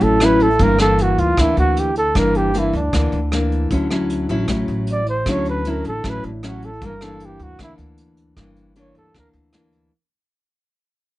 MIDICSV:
0, 0, Header, 1, 5, 480
1, 0, Start_track
1, 0, Tempo, 388601
1, 735, Time_signature, 4, 2, 24, 8
1, 13821, End_track
2, 0, Start_track
2, 0, Title_t, "Flugelhorn"
2, 0, Program_c, 0, 56
2, 45, Note_on_c, 0, 69, 78
2, 309, Note_on_c, 0, 71, 77
2, 328, Note_off_c, 0, 69, 0
2, 521, Note_on_c, 0, 69, 86
2, 540, Note_off_c, 0, 71, 0
2, 779, Note_on_c, 0, 70, 85
2, 798, Note_off_c, 0, 69, 0
2, 991, Note_off_c, 0, 70, 0
2, 999, Note_on_c, 0, 69, 84
2, 1262, Note_on_c, 0, 66, 73
2, 1280, Note_off_c, 0, 69, 0
2, 1477, Note_on_c, 0, 65, 86
2, 1496, Note_off_c, 0, 66, 0
2, 1736, Note_on_c, 0, 64, 73
2, 1755, Note_off_c, 0, 65, 0
2, 1951, Note_off_c, 0, 64, 0
2, 1958, Note_on_c, 0, 66, 78
2, 2217, Note_on_c, 0, 67, 70
2, 2236, Note_off_c, 0, 66, 0
2, 2433, Note_off_c, 0, 67, 0
2, 2440, Note_on_c, 0, 69, 84
2, 2700, Note_on_c, 0, 70, 77
2, 2718, Note_off_c, 0, 69, 0
2, 2925, Note_on_c, 0, 67, 90
2, 2943, Note_off_c, 0, 70, 0
2, 3198, Note_on_c, 0, 64, 71
2, 3216, Note_off_c, 0, 67, 0
2, 3405, Note_off_c, 0, 64, 0
2, 3412, Note_on_c, 0, 62, 69
2, 4066, Note_off_c, 0, 62, 0
2, 6076, Note_on_c, 0, 74, 78
2, 6273, Note_off_c, 0, 74, 0
2, 6291, Note_on_c, 0, 72, 78
2, 6552, Note_on_c, 0, 73, 86
2, 6571, Note_off_c, 0, 72, 0
2, 6766, Note_off_c, 0, 73, 0
2, 6788, Note_on_c, 0, 71, 80
2, 7044, Note_on_c, 0, 70, 72
2, 7062, Note_off_c, 0, 71, 0
2, 7252, Note_off_c, 0, 70, 0
2, 7261, Note_on_c, 0, 69, 85
2, 7527, Note_on_c, 0, 71, 90
2, 7545, Note_off_c, 0, 69, 0
2, 7733, Note_off_c, 0, 71, 0
2, 7743, Note_on_c, 0, 62, 45
2, 7941, Note_off_c, 0, 62, 0
2, 7994, Note_on_c, 0, 66, 72
2, 8216, Note_on_c, 0, 69, 83
2, 8234, Note_off_c, 0, 66, 0
2, 8470, Note_on_c, 0, 70, 87
2, 8488, Note_off_c, 0, 69, 0
2, 8683, Note_on_c, 0, 69, 83
2, 8702, Note_off_c, 0, 70, 0
2, 8962, Note_on_c, 0, 67, 67
2, 8981, Note_off_c, 0, 69, 0
2, 9173, Note_on_c, 0, 66, 80
2, 9192, Note_off_c, 0, 67, 0
2, 9396, Note_off_c, 0, 66, 0
2, 9429, Note_on_c, 0, 64, 78
2, 9557, Note_off_c, 0, 64, 0
2, 10862, Note_on_c, 0, 73, 68
2, 11064, Note_off_c, 0, 73, 0
2, 11088, Note_on_c, 0, 69, 82
2, 11296, Note_off_c, 0, 69, 0
2, 11350, Note_on_c, 0, 70, 70
2, 11478, Note_off_c, 0, 70, 0
2, 13821, End_track
3, 0, Start_track
3, 0, Title_t, "Nylon-string guitar"
3, 0, Program_c, 1, 24
3, 0, Note_on_c, 1, 45, 49
3, 0, Note_on_c, 1, 54, 47
3, 0, Note_on_c, 1, 61, 52
3, 0, Note_on_c, 1, 64, 57
3, 218, Note_off_c, 1, 54, 0
3, 221, Note_off_c, 1, 61, 0
3, 224, Note_off_c, 1, 64, 0
3, 269, Note_on_c, 1, 54, 53
3, 276, Note_on_c, 1, 61, 52
3, 281, Note_on_c, 1, 64, 63
3, 585, Note_off_c, 1, 54, 0
3, 588, Note_off_c, 1, 61, 0
3, 591, Note_off_c, 1, 64, 0
3, 714, Note_off_c, 1, 45, 0
3, 746, Note_on_c, 1, 43, 53
3, 748, Note_on_c, 1, 52, 51
3, 751, Note_on_c, 1, 58, 52
3, 757, Note_on_c, 1, 62, 56
3, 943, Note_off_c, 1, 52, 0
3, 945, Note_off_c, 1, 58, 0
3, 946, Note_off_c, 1, 62, 0
3, 988, Note_on_c, 1, 52, 59
3, 993, Note_on_c, 1, 58, 65
3, 996, Note_on_c, 1, 62, 70
3, 1664, Note_off_c, 1, 52, 0
3, 1666, Note_off_c, 1, 58, 0
3, 1668, Note_off_c, 1, 62, 0
3, 1678, Note_off_c, 1, 43, 0
3, 1708, Note_on_c, 1, 50, 48
3, 1713, Note_on_c, 1, 52, 53
3, 1719, Note_on_c, 1, 62, 57
3, 1721, Note_on_c, 1, 58, 47
3, 2349, Note_off_c, 1, 52, 0
3, 2351, Note_off_c, 1, 58, 0
3, 2354, Note_off_c, 1, 62, 0
3, 2640, Note_off_c, 1, 50, 0
3, 2658, Note_on_c, 1, 43, 53
3, 2660, Note_on_c, 1, 52, 55
3, 2666, Note_on_c, 1, 58, 46
3, 2670, Note_on_c, 1, 62, 56
3, 3100, Note_off_c, 1, 52, 0
3, 3102, Note_off_c, 1, 58, 0
3, 3106, Note_off_c, 1, 62, 0
3, 3137, Note_on_c, 1, 52, 49
3, 3142, Note_on_c, 1, 58, 50
3, 3148, Note_on_c, 1, 62, 58
3, 3446, Note_off_c, 1, 52, 0
3, 3449, Note_off_c, 1, 58, 0
3, 3452, Note_off_c, 1, 62, 0
3, 3595, Note_off_c, 1, 43, 0
3, 3623, Note_on_c, 1, 50, 50
3, 3628, Note_on_c, 1, 52, 42
3, 3630, Note_on_c, 1, 58, 54
3, 3636, Note_on_c, 1, 62, 52
3, 3931, Note_off_c, 1, 52, 0
3, 3933, Note_off_c, 1, 58, 0
3, 3936, Note_off_c, 1, 62, 0
3, 4104, Note_on_c, 1, 52, 52
3, 4113, Note_on_c, 1, 58, 57
3, 4114, Note_on_c, 1, 62, 59
3, 4558, Note_off_c, 1, 50, 0
3, 4563, Note_off_c, 1, 52, 0
3, 4565, Note_off_c, 1, 58, 0
3, 4567, Note_off_c, 1, 62, 0
3, 4589, Note_on_c, 1, 50, 48
3, 4593, Note_on_c, 1, 54, 53
3, 4596, Note_on_c, 1, 61, 54
3, 4601, Note_on_c, 1, 64, 56
3, 4786, Note_off_c, 1, 54, 0
3, 4789, Note_off_c, 1, 61, 0
3, 4791, Note_off_c, 1, 64, 0
3, 4826, Note_on_c, 1, 54, 60
3, 4834, Note_on_c, 1, 61, 58
3, 4840, Note_on_c, 1, 64, 61
3, 5264, Note_off_c, 1, 54, 0
3, 5268, Note_off_c, 1, 61, 0
3, 5271, Note_off_c, 1, 64, 0
3, 5307, Note_on_c, 1, 54, 58
3, 5312, Note_on_c, 1, 61, 58
3, 5319, Note_on_c, 1, 64, 68
3, 5505, Note_off_c, 1, 54, 0
3, 5508, Note_off_c, 1, 61, 0
3, 5509, Note_off_c, 1, 64, 0
3, 5521, Note_off_c, 1, 50, 0
3, 5545, Note_on_c, 1, 45, 48
3, 5549, Note_on_c, 1, 54, 47
3, 5552, Note_on_c, 1, 61, 46
3, 5560, Note_on_c, 1, 64, 49
3, 6189, Note_off_c, 1, 54, 0
3, 6192, Note_off_c, 1, 61, 0
3, 6194, Note_off_c, 1, 64, 0
3, 6479, Note_off_c, 1, 45, 0
3, 6512, Note_on_c, 1, 50, 51
3, 6518, Note_on_c, 1, 54, 54
3, 6523, Note_on_c, 1, 64, 55
3, 6524, Note_on_c, 1, 61, 53
3, 6949, Note_off_c, 1, 54, 0
3, 6951, Note_off_c, 1, 61, 0
3, 6953, Note_off_c, 1, 64, 0
3, 6998, Note_on_c, 1, 54, 51
3, 7007, Note_on_c, 1, 64, 58
3, 7008, Note_on_c, 1, 61, 46
3, 7299, Note_off_c, 1, 54, 0
3, 7301, Note_off_c, 1, 61, 0
3, 7302, Note_off_c, 1, 64, 0
3, 7443, Note_off_c, 1, 50, 0
3, 7468, Note_on_c, 1, 45, 48
3, 7475, Note_on_c, 1, 54, 47
3, 7476, Note_on_c, 1, 61, 53
3, 7482, Note_on_c, 1, 64, 50
3, 7775, Note_off_c, 1, 54, 0
3, 7777, Note_off_c, 1, 61, 0
3, 7780, Note_off_c, 1, 64, 0
3, 7949, Note_on_c, 1, 54, 59
3, 7956, Note_on_c, 1, 61, 55
3, 7958, Note_on_c, 1, 64, 56
3, 8268, Note_off_c, 1, 54, 0
3, 8268, Note_off_c, 1, 61, 0
3, 8271, Note_off_c, 1, 64, 0
3, 8400, Note_off_c, 1, 45, 0
3, 8429, Note_on_c, 1, 52, 44
3, 8430, Note_on_c, 1, 43, 52
3, 8435, Note_on_c, 1, 58, 47
3, 8441, Note_on_c, 1, 62, 54
3, 8565, Note_off_c, 1, 52, 0
3, 8569, Note_off_c, 1, 58, 0
3, 8570, Note_off_c, 1, 62, 0
3, 8670, Note_on_c, 1, 52, 62
3, 8675, Note_on_c, 1, 58, 58
3, 8678, Note_on_c, 1, 62, 65
3, 9346, Note_off_c, 1, 52, 0
3, 9348, Note_off_c, 1, 58, 0
3, 9350, Note_off_c, 1, 62, 0
3, 9361, Note_off_c, 1, 43, 0
3, 9385, Note_on_c, 1, 50, 47
3, 9390, Note_on_c, 1, 52, 48
3, 9396, Note_on_c, 1, 58, 48
3, 9396, Note_on_c, 1, 62, 57
3, 10304, Note_off_c, 1, 52, 0
3, 10305, Note_off_c, 1, 58, 0
3, 10308, Note_off_c, 1, 62, 0
3, 10318, Note_off_c, 1, 50, 0
3, 10345, Note_on_c, 1, 43, 46
3, 10349, Note_on_c, 1, 52, 54
3, 10356, Note_on_c, 1, 62, 53
3, 10358, Note_on_c, 1, 58, 47
3, 10783, Note_off_c, 1, 52, 0
3, 10786, Note_off_c, 1, 58, 0
3, 10788, Note_off_c, 1, 62, 0
3, 10818, Note_on_c, 1, 52, 54
3, 10824, Note_on_c, 1, 58, 53
3, 10827, Note_on_c, 1, 62, 58
3, 11259, Note_off_c, 1, 52, 0
3, 11260, Note_off_c, 1, 58, 0
3, 11263, Note_off_c, 1, 62, 0
3, 11278, Note_off_c, 1, 43, 0
3, 11298, Note_on_c, 1, 50, 48
3, 11305, Note_on_c, 1, 52, 47
3, 11306, Note_on_c, 1, 58, 45
3, 11314, Note_on_c, 1, 62, 51
3, 11741, Note_off_c, 1, 52, 0
3, 11743, Note_off_c, 1, 58, 0
3, 11746, Note_off_c, 1, 62, 0
3, 11778, Note_on_c, 1, 52, 49
3, 11784, Note_on_c, 1, 58, 55
3, 11791, Note_on_c, 1, 62, 56
3, 12233, Note_off_c, 1, 50, 0
3, 12237, Note_off_c, 1, 52, 0
3, 12240, Note_off_c, 1, 58, 0
3, 12244, Note_off_c, 1, 62, 0
3, 13821, End_track
4, 0, Start_track
4, 0, Title_t, "Upright bass"
4, 0, Program_c, 2, 32
4, 17, Note_on_c, 2, 33, 84
4, 687, Note_off_c, 2, 33, 0
4, 735, Note_on_c, 2, 31, 89
4, 1406, Note_off_c, 2, 31, 0
4, 1460, Note_on_c, 2, 38, 80
4, 1682, Note_off_c, 2, 38, 0
4, 1696, Note_on_c, 2, 38, 81
4, 1920, Note_off_c, 2, 38, 0
4, 1939, Note_on_c, 2, 38, 88
4, 2609, Note_off_c, 2, 38, 0
4, 2660, Note_on_c, 2, 31, 79
4, 3330, Note_off_c, 2, 31, 0
4, 3377, Note_on_c, 2, 38, 84
4, 3601, Note_off_c, 2, 38, 0
4, 3621, Note_on_c, 2, 38, 75
4, 3843, Note_off_c, 2, 38, 0
4, 3855, Note_on_c, 2, 38, 84
4, 4528, Note_off_c, 2, 38, 0
4, 4580, Note_on_c, 2, 38, 80
4, 5250, Note_off_c, 2, 38, 0
4, 5301, Note_on_c, 2, 33, 86
4, 5524, Note_off_c, 2, 33, 0
4, 5537, Note_on_c, 2, 33, 74
4, 5761, Note_off_c, 2, 33, 0
4, 5779, Note_on_c, 2, 33, 77
4, 6450, Note_off_c, 2, 33, 0
4, 6497, Note_on_c, 2, 38, 88
4, 7169, Note_off_c, 2, 38, 0
4, 7226, Note_on_c, 2, 33, 81
4, 7446, Note_off_c, 2, 33, 0
4, 7461, Note_on_c, 2, 33, 80
4, 7684, Note_off_c, 2, 33, 0
4, 7706, Note_on_c, 2, 33, 81
4, 8373, Note_off_c, 2, 33, 0
4, 8422, Note_on_c, 2, 31, 76
4, 9091, Note_off_c, 2, 31, 0
4, 9134, Note_on_c, 2, 38, 83
4, 9359, Note_off_c, 2, 38, 0
4, 9376, Note_on_c, 2, 38, 67
4, 9600, Note_off_c, 2, 38, 0
4, 9608, Note_on_c, 2, 38, 78
4, 10283, Note_off_c, 2, 38, 0
4, 10335, Note_on_c, 2, 31, 80
4, 11006, Note_off_c, 2, 31, 0
4, 11052, Note_on_c, 2, 38, 78
4, 11277, Note_off_c, 2, 38, 0
4, 11299, Note_on_c, 2, 38, 77
4, 11521, Note_off_c, 2, 38, 0
4, 11529, Note_on_c, 2, 38, 79
4, 12203, Note_off_c, 2, 38, 0
4, 13821, End_track
5, 0, Start_track
5, 0, Title_t, "Drums"
5, 9, Note_on_c, 9, 42, 25
5, 132, Note_off_c, 9, 42, 0
5, 251, Note_on_c, 9, 37, 58
5, 251, Note_on_c, 9, 42, 42
5, 374, Note_off_c, 9, 37, 0
5, 374, Note_off_c, 9, 42, 0
5, 492, Note_on_c, 9, 42, 27
5, 616, Note_off_c, 9, 42, 0
5, 732, Note_on_c, 9, 42, 39
5, 734, Note_on_c, 9, 36, 54
5, 856, Note_off_c, 9, 42, 0
5, 858, Note_off_c, 9, 36, 0
5, 970, Note_on_c, 9, 37, 55
5, 970, Note_on_c, 9, 42, 26
5, 1094, Note_off_c, 9, 37, 0
5, 1094, Note_off_c, 9, 42, 0
5, 1217, Note_on_c, 9, 42, 43
5, 1341, Note_off_c, 9, 42, 0
5, 1461, Note_on_c, 9, 42, 27
5, 1584, Note_off_c, 9, 42, 0
5, 1698, Note_on_c, 9, 36, 55
5, 1702, Note_on_c, 9, 37, 56
5, 1702, Note_on_c, 9, 42, 44
5, 1821, Note_off_c, 9, 36, 0
5, 1826, Note_off_c, 9, 37, 0
5, 1826, Note_off_c, 9, 42, 0
5, 1941, Note_on_c, 9, 42, 23
5, 2065, Note_off_c, 9, 42, 0
5, 2181, Note_on_c, 9, 42, 42
5, 2304, Note_off_c, 9, 42, 0
5, 2418, Note_on_c, 9, 42, 27
5, 2541, Note_off_c, 9, 42, 0
5, 2659, Note_on_c, 9, 36, 59
5, 2664, Note_on_c, 9, 37, 55
5, 2664, Note_on_c, 9, 42, 40
5, 2782, Note_off_c, 9, 36, 0
5, 2787, Note_off_c, 9, 37, 0
5, 2787, Note_off_c, 9, 42, 0
5, 2901, Note_on_c, 9, 42, 27
5, 3025, Note_off_c, 9, 42, 0
5, 3145, Note_on_c, 9, 42, 42
5, 3268, Note_off_c, 9, 42, 0
5, 3390, Note_on_c, 9, 42, 28
5, 3513, Note_off_c, 9, 42, 0
5, 3620, Note_on_c, 9, 36, 62
5, 3623, Note_on_c, 9, 37, 60
5, 3623, Note_on_c, 9, 42, 40
5, 3743, Note_off_c, 9, 36, 0
5, 3746, Note_off_c, 9, 37, 0
5, 3746, Note_off_c, 9, 42, 0
5, 3863, Note_on_c, 9, 42, 24
5, 3987, Note_off_c, 9, 42, 0
5, 4100, Note_on_c, 9, 37, 62
5, 4100, Note_on_c, 9, 42, 38
5, 4224, Note_off_c, 9, 37, 0
5, 4224, Note_off_c, 9, 42, 0
5, 4348, Note_on_c, 9, 42, 23
5, 4471, Note_off_c, 9, 42, 0
5, 4579, Note_on_c, 9, 36, 52
5, 4582, Note_on_c, 9, 42, 41
5, 4702, Note_off_c, 9, 36, 0
5, 4705, Note_off_c, 9, 42, 0
5, 4824, Note_on_c, 9, 37, 52
5, 4824, Note_on_c, 9, 42, 24
5, 4947, Note_off_c, 9, 37, 0
5, 4947, Note_off_c, 9, 42, 0
5, 5062, Note_on_c, 9, 42, 44
5, 5185, Note_off_c, 9, 42, 0
5, 5300, Note_on_c, 9, 42, 28
5, 5423, Note_off_c, 9, 42, 0
5, 5532, Note_on_c, 9, 37, 58
5, 5532, Note_on_c, 9, 42, 45
5, 5536, Note_on_c, 9, 36, 51
5, 5656, Note_off_c, 9, 37, 0
5, 5656, Note_off_c, 9, 42, 0
5, 5659, Note_off_c, 9, 36, 0
5, 5780, Note_on_c, 9, 42, 23
5, 5904, Note_off_c, 9, 42, 0
5, 6015, Note_on_c, 9, 42, 42
5, 6138, Note_off_c, 9, 42, 0
5, 6258, Note_on_c, 9, 42, 27
5, 6382, Note_off_c, 9, 42, 0
5, 6498, Note_on_c, 9, 37, 58
5, 6498, Note_on_c, 9, 42, 44
5, 6499, Note_on_c, 9, 36, 57
5, 6621, Note_off_c, 9, 37, 0
5, 6621, Note_off_c, 9, 42, 0
5, 6622, Note_off_c, 9, 36, 0
5, 6736, Note_on_c, 9, 42, 26
5, 6860, Note_off_c, 9, 42, 0
5, 6979, Note_on_c, 9, 42, 42
5, 7103, Note_off_c, 9, 42, 0
5, 7219, Note_on_c, 9, 42, 26
5, 7342, Note_off_c, 9, 42, 0
5, 7461, Note_on_c, 9, 36, 52
5, 7462, Note_on_c, 9, 37, 58
5, 7462, Note_on_c, 9, 42, 37
5, 7585, Note_off_c, 9, 36, 0
5, 7585, Note_off_c, 9, 37, 0
5, 7585, Note_off_c, 9, 42, 0
5, 7702, Note_on_c, 9, 42, 22
5, 7826, Note_off_c, 9, 42, 0
5, 7943, Note_on_c, 9, 37, 52
5, 7943, Note_on_c, 9, 42, 38
5, 8066, Note_off_c, 9, 37, 0
5, 8066, Note_off_c, 9, 42, 0
5, 8184, Note_on_c, 9, 42, 23
5, 8307, Note_off_c, 9, 42, 0
5, 8421, Note_on_c, 9, 36, 60
5, 8422, Note_on_c, 9, 42, 39
5, 8544, Note_off_c, 9, 36, 0
5, 8546, Note_off_c, 9, 42, 0
5, 8659, Note_on_c, 9, 37, 56
5, 8659, Note_on_c, 9, 42, 24
5, 8782, Note_off_c, 9, 37, 0
5, 8782, Note_off_c, 9, 42, 0
5, 8895, Note_on_c, 9, 42, 42
5, 9019, Note_off_c, 9, 42, 0
5, 9138, Note_on_c, 9, 42, 27
5, 9262, Note_off_c, 9, 42, 0
5, 9374, Note_on_c, 9, 37, 54
5, 9374, Note_on_c, 9, 42, 41
5, 9377, Note_on_c, 9, 36, 58
5, 9497, Note_off_c, 9, 37, 0
5, 9497, Note_off_c, 9, 42, 0
5, 9501, Note_off_c, 9, 36, 0
5, 9614, Note_on_c, 9, 42, 22
5, 9738, Note_off_c, 9, 42, 0
5, 9853, Note_on_c, 9, 42, 41
5, 9977, Note_off_c, 9, 42, 0
5, 10093, Note_on_c, 9, 42, 27
5, 10217, Note_off_c, 9, 42, 0
5, 10335, Note_on_c, 9, 36, 54
5, 10335, Note_on_c, 9, 37, 58
5, 10335, Note_on_c, 9, 42, 38
5, 10458, Note_off_c, 9, 37, 0
5, 10458, Note_off_c, 9, 42, 0
5, 10459, Note_off_c, 9, 36, 0
5, 10577, Note_on_c, 9, 42, 26
5, 10701, Note_off_c, 9, 42, 0
5, 10816, Note_on_c, 9, 42, 44
5, 10940, Note_off_c, 9, 42, 0
5, 11058, Note_on_c, 9, 42, 27
5, 11181, Note_off_c, 9, 42, 0
5, 11296, Note_on_c, 9, 36, 53
5, 11298, Note_on_c, 9, 37, 55
5, 11298, Note_on_c, 9, 42, 40
5, 11419, Note_off_c, 9, 36, 0
5, 11421, Note_off_c, 9, 37, 0
5, 11421, Note_off_c, 9, 42, 0
5, 11537, Note_on_c, 9, 42, 22
5, 11661, Note_off_c, 9, 42, 0
5, 11768, Note_on_c, 9, 37, 56
5, 11768, Note_on_c, 9, 42, 41
5, 11892, Note_off_c, 9, 37, 0
5, 11892, Note_off_c, 9, 42, 0
5, 12012, Note_on_c, 9, 42, 23
5, 12135, Note_off_c, 9, 42, 0
5, 13821, End_track
0, 0, End_of_file